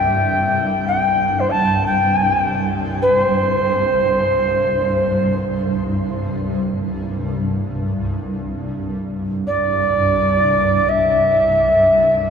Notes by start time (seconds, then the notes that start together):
Already playing: C2 G2 G5
0.87 G5
1.40 C5
1.50 A5
1.86 G5
3.02 C5
8.22 C2 G2
9.47 D5
10.89 E5